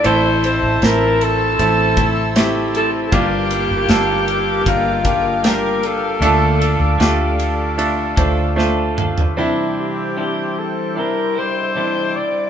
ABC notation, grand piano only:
X:1
M:4/4
L:1/8
Q:1/4=77
K:Cmix
V:1 name="Grand piano"
[A,CEA]2 [E,CEc]2 [A,CEA] [A,CEA] [A,CEG]2 | [B,DFG]2 [B,DFA]2 [B,DFB] [B,DFG] [B,DFG]2 | [A,DFA]2 [A,DFG]2 [A,DFA] [A,DFc] [A,DFc]2 | [CDE]2 [CDG]2 [CDE]2 [CDE]2 |]
V:2 name="Grand piano" clef=bass
A,,3 z4 z | G,,3 z4 z | D,3 z4 z | C,3 z4 z |]